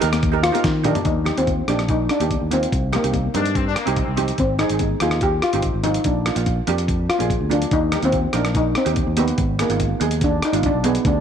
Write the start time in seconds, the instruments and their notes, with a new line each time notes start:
0.00 fingered electric bass D#2, steel pan D#4 G4 A#4, closed hi-hat, low conga
0.13 cross-stick, closed hi-hat, high conga
0.23 kick, closed hi-hat
0.32 steel pan D#4 G4 A#4
0.43 steel pan F4, cross-stick, closed hi-hat
0.52 steel pan D#4 G4 A#4, closed hi-hat, high conga
0.64 fingered electric bass D#3, kick, snare, closed hi-hat
0.83 steel pan D4 D#4 G4 A#4, closed hi-hat, mid tom, low conga
0.95 closed hi-hat, floor tom, high conga
1.05 fingered electric bass D#2, steel pan D#4, kick, closed hi-hat
1.24 steel pan A#3 D#4 G4, cross-stick, closed hi-hat, low conga
1.37 fingered electric bass D#2, steel pan A#3 C4 D#4 F4, closed hi-hat
1.47 kick, closed hi-hat, high conga
1.68 fingered electric bass A#1, steel pan A#3 D4 D#4 G4, cross-stick, closed hi-hat, low conga
1.79 cross-stick, closed hi-hat
1.89 steel pan D#4, kick, closed hi-hat
2.09 steel pan D4, cross-stick, closed hi-hat
2.20 fingered electric bass D#2, steel pan A#3 D#4 G4, closed hi-hat, high conga
2.31 kick, closed hi-hat
2.42 fingered electric bass D#2
2.51 steel pan A#3 C4 D#4 F4, closed hi-hat, low conga
2.63 closed hi-hat
2.72 fingered electric bass C2, kick, closed hi-hat
2.93 steel pan A#3 C4 D#4 G4, cross-stick, closed hi-hat, low conga
3.03 fingered electric bass C2, steel pan C4 D#4 G4, closed hi-hat
3.13 kick, closed hi-hat, high conga
3.34 fingered electric bass G2, steel pan C4 D#4 A#4, horn section D4, closed hi-hat, low conga
3.46 closed hi-hat
3.55 horn section C4, kick, closed hi-hat
3.67 horn section D4
3.76 horn section A#3, cross-stick, closed hi-hat
3.86 fingered electric bass C2, steel pan C4 D#4 G4, closed hi-hat, high conga
3.96 horn section C4, kick, closed hi-hat
4.08 fingered electric bass C2
4.17 steel pan C4 D#4 G4, closed hi-hat, high conga, low conga
4.28 closed hi-hat
4.38 fingered electric bass G#1, steel pan C4, kick, closed hi-hat
4.59 steel pan C4 D#4 G#4, cross-stick, closed hi-hat, low conga
4.70 fingered electric bass G#1, steel pan C4 D#4 G#4, closed hi-hat
4.79 kick, closed hi-hat, high conga
5.00 fingered electric bass D#2, steel pan C4 D#4 F4 G#4, cross-stick, closed hi-hat, low conga
5.11 cross-stick, closed hi-hat
5.21 steel pan G4, kick, closed hi-hat
5.42 steel pan F4, cross-stick, closed hi-hat
5.53 fingered electric bass G#1, steel pan C4 D#4 G4, closed hi-hat, high conga
5.62 kick, closed hi-hat
5.74 fingered electric bass G#1
5.83 steel pan C4 D#4 F4, closed hi-hat, high conga, low conga
5.94 closed hi-hat
6.04 fingered electric bass A#1, steel pan D4, kick, closed hi-hat
6.26 steel pan A#3 D4 F4, cross-stick, closed hi-hat
6.36 fingered electric bass A#1, steel pan A#3 D4 F4, closed hi-hat
6.46 kick, closed hi-hat, high conga
6.67 fingered electric bass F2, steel pan A#3 D4 G4, closed hi-hat, low conga
6.78 closed hi-hat
6.88 kick, closed hi-hat
7.09 steel pan F4, cross-stick, closed hi-hat
7.18 fingered electric bass A#1, steel pan A#3 D4 G#4, closed hi-hat, high conga
7.30 kick, closed hi-hat
7.41 fingered electric bass D2
7.49 steel pan A#3 D4 F4, closed hi-hat, high conga, low conga
7.62 closed hi-hat, high conga
7.71 fingered electric bass D#2, steel pan D#4, kick, closed hi-hat
7.92 steel pan A#3 D#4 G4, cross-stick, closed hi-hat, low conga
8.02 fingered electric bass D#2, steel pan A#3 C4 D#4 F4, closed hi-hat
8.12 kick, closed hi-hat, high conga
8.33 fingered electric bass A#1, steel pan A#3 D4 D#4 A#4, cross-stick, closed hi-hat, low conga
8.45 cross-stick, closed hi-hat
8.55 steel pan D#4, kick, closed hi-hat
8.75 steel pan C4, cross-stick, closed hi-hat
8.85 fingered electric bass D#2, steel pan A#3 D#4 G4, closed hi-hat, high conga
8.96 kick, closed hi-hat
9.07 fingered electric bass D#2
9.16 steel pan A#3 B3 D#4 G4, closed hi-hat, high conga, low conga
9.28 closed hi-hat
9.38 fingered electric bass G#1, kick, closed hi-hat
9.59 steel pan A#3 B3 D#4 G#4, cross-stick, closed hi-hat, low conga
9.70 fingered electric bass G#1, steel pan B3 D#4 F4, closed hi-hat
9.80 kick, closed hi-hat, high conga
10.00 fingered electric bass D#2, steel pan B3 D#4 G#4, closed hi-hat, low conga
10.11 closed hi-hat
10.21 steel pan D4, kick, closed hi-hat
10.42 steel pan D#4, cross-stick, closed hi-hat
10.52 fingered electric bass G#1, steel pan B3 D#4 F4, closed hi-hat, high conga
10.63 steel pan D4, kick, closed hi-hat
10.74 fingered electric bass B1
10.84 steel pan B3 D#4 G#4, closed hi-hat, high conga, low conga
10.95 closed hi-hat
11.05 fingered electric bass D2, steel pan D4, kick, closed hi-hat